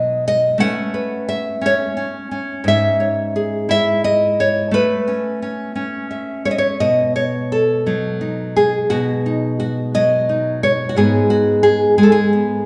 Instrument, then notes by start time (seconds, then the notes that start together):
nylon-string guitar
Already playing: B2 F#3 D#4 A4 D#5
0.28 D#5
0.58 A3 C#4 B4 F#5
0.94 B4
1.29 E5
1.61 C#4
1.66 C#5
1.97 C#4
2.31 C#4
2.64 G#2
2.68 E5
3.00 C#5
3.36 G#4
3.69 E4 E5
4.04 D#5
4.40 C#5
4.71 A3 B4
5.07 C#4
5.42 C#4
5.75 C#4
6.11 E5
6.45 C#5 E5
6.51 D#5
6.58 C#5
6.80 B2 D#5
7.16 C#5
7.52 A4
7.86 F#3 D#4
8.21 D#4
8.56 G#4
8.90 B2 F#4
9.26 D#4
9.60 F#4
9.94 F#3 D#5
10.29 D#4
10.63 C#5
10.89 F#4
10.96 G#2 G#3 B3 F#4 G#4
11.30 F#4
11.63 G#4
11.98 G#3 G#4
12.03 A4
12.12 G#4
12.33 B3